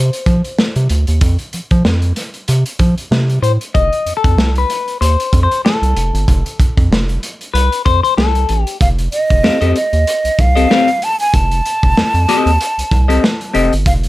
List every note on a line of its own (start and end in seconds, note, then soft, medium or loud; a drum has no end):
0.00 0.10 C3 medium
0.00 0.86 C5 medium
0.13 closed hi-hat medium
0.26 0.42 F3 medium
0.26 kick loud
0.26 closed hi-hat medium
0.44 closed hi-hat medium
0.59 snare loud
0.76 0.88 C3 medium
0.76 closed hi-hat medium
0.89 1.05 D2 medium
0.89 closed hi-hat medium
1.07 1.20 D#2 medium
1.07 closed hi-hat medium
1.21 1.37 F2 loud
1.21 kick loud
1.21 closed hi-hat medium
1.39 closed hi-hat soft
1.53 1.61 F3 soft
1.53 closed hi-hat medium
1.71 1.83 F3 loud
1.71 kick medium
1.71 closed hi-hat soft
1.85 2.13 F2 loud
1.85 snare loud
2.02 closed hi-hat medium
2.16 snare soft
2.16 closed hi-hat medium
2.34 closed hi-hat soft
2.48 2.64 C3 loud
2.48 closed hi-hat medium
2.66 closed hi-hat medium
2.79 2.95 F3 medium
2.79 kick medium
2.79 closed hi-hat medium
2.98 closed hi-hat medium
3.11 3.39 C3 loud
3.11 snare loud
3.30 closed hi-hat medium
3.42 3.58 A2 medium
3.42 3.51 C5 loud
3.42 closed hi-hat medium
3.61 closed hi-hat medium
3.74 3.90 F1 loud
3.74 4.14 D#5 loud
3.74 kick loud
3.74 closed hi-hat medium
3.93 closed hi-hat soft
4.06 4.13 F2 soft
4.06 closed hi-hat medium
4.17 4.56 A4 medium
4.24 4.36 F2 loud
4.24 kick medium
4.24 closed hi-hat soft
4.37 4.65 C2 loud
4.37 snare loud
4.56 5.00 B4 loud
4.56 closed hi-hat medium
4.70 closed hi-hat medium
4.88 closed hi-hat soft
5.01 5.17 D#2 loud
5.01 5.42 C5 medium
5.01 closed hi-hat medium
5.20 closed hi-hat medium
5.33 5.48 F2 loud
5.33 kick medium
5.33 closed hi-hat medium
5.43 5.63 C5 medium
5.51 closed hi-hat medium
5.65 7.19 A4 medium
5.65 snare loud
5.82 5.94 C2 medium
5.82 closed hi-hat medium
5.96 6.12 F1 medium
5.96 closed hi-hat medium
6.14 6.26 G1 loud
6.14 closed hi-hat medium
6.28 6.43 F1 loud
6.28 kick loud
6.28 closed hi-hat medium
6.46 closed hi-hat soft
6.59 6.66 F2 soft
6.59 kick loud
6.59 closed hi-hat medium
6.77 6.89 F2 medium
6.77 kick medium
6.77 closed hi-hat soft
6.91 7.18 F1 loud
6.91 snare loud
7.09 closed hi-hat soft
7.23 closed hi-hat medium
7.41 closed hi-hat soft
7.54 7.70 C2 loud
7.54 7.85 B4 medium
7.54 closed hi-hat medium
7.72 closed hi-hat medium
7.85 8.01 F2 loud
7.85 8.02 C5 loud
7.85 kick medium
7.85 closed hi-hat medium
8.03 8.17 C5 loud
8.03 closed hi-hat medium
8.17 8.45 C2 loud
8.17 8.62 A4 medium
8.17 snare loud
8.35 closed hi-hat medium
8.49 8.65 A1 loud
8.49 closed hi-hat medium
8.62 8.77 G4 medium
8.67 closed hi-hat medium
8.81 9.08 F1 loud
8.81 8.88 F5 medium
8.81 kick loud
8.81 closed hi-hat loud
8.99 closed hi-hat medium
9.12 9.72 D#5 loud
9.12 closed hi-hat medium
9.30 9.42 F1 medium
9.30 kick medium
9.30 closed hi-hat soft
9.43 9.51 F2 soft
9.43 9.58 C4 medium
9.43 9.58 G4 medium
9.43 9.58 A4 medium
9.43 9.58 F5 medium
9.43 snare loud
9.61 9.74 F2 medium
9.61 9.76 C4 medium
9.61 9.76 G4 medium
9.61 9.76 A4 medium
9.61 9.75 D#5 medium
9.61 closed hi-hat medium
9.76 10.42 D#5 medium
9.76 closed hi-hat medium
9.93 10.05 D#2 medium
9.93 closed hi-hat soft
10.07 closed hi-hat medium
10.24 10.30 C2 soft
10.24 closed hi-hat medium
10.39 10.66 C2 medium
10.39 11.05 F5 loud
10.39 kick loud
10.39 closed hi-hat medium
10.55 10.69 C4 medium
10.55 10.69 G4 medium
10.55 10.70 A4 medium
10.55 10.70 D#5 medium
10.55 closed hi-hat medium
10.70 10.88 C4 loud
10.70 10.88 G4 medium
10.70 10.89 A4 medium
10.70 10.89 F5 loud
10.70 snare loud
10.88 closed hi-hat medium
11.02 11.19 A5 loud
11.02 closed hi-hat medium
11.20 11.36 G#5 loud
11.20 closed hi-hat medium
11.34 11.61 F1 loud
11.34 13.55 A5 loud
11.34 kick loud
11.34 closed hi-hat medium
11.51 closed hi-hat medium
11.66 closed hi-hat medium
11.83 11.95 F1 medium
11.83 kick medium
11.83 closed hi-hat soft
11.96 12.04 F2 medium
11.96 snare loud
12.14 12.26 F2 loud
12.14 closed hi-hat soft
12.28 12.50 C4 medium
12.28 12.50 G4 medium
12.28 12.50 A4 loud
12.28 12.50 D#5 loud
12.28 snare soft
12.28 closed hi-hat medium
12.46 12.58 D#2 loud
12.46 closed hi-hat soft
12.61 closed hi-hat medium
12.78 12.83 C2 soft
12.78 closed hi-hat medium
12.91 13.19 C2 loud
12.91 kick loud
12.91 closed hi-hat medium
13.08 13.23 C4 medium
13.08 13.23 G4 medium
13.08 13.23 A4 medium
13.08 13.23 D#5 medium
13.08 closed hi-hat medium
13.24 snare loud
13.41 closed hi-hat medium
13.53 13.70 F1 loud
13.53 13.72 C4 medium
13.53 13.72 G4 medium
13.53 13.72 A4 medium
13.53 13.73 D#5 medium
13.53 closed hi-hat medium
13.73 13.85 G1 medium
13.73 closed hi-hat medium
13.86 14.09 F1 loud
13.86 13.93 F5 loud
13.86 kick loud
13.86 closed hi-hat loud
14.03 closed hi-hat soft